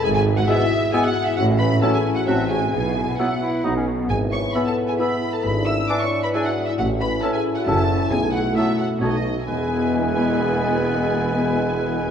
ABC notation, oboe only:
X:1
M:3/4
L:1/8
Q:1/4=134
K:E
V:1 name="Oboe"
z2 e2 e2 | z2 e2 f2 | z2 e2 d2 | z2 e2 e2 |
z2 e2 e2 | z2 e2 e2 | z2 e2 c2 | B6- |
B6 |]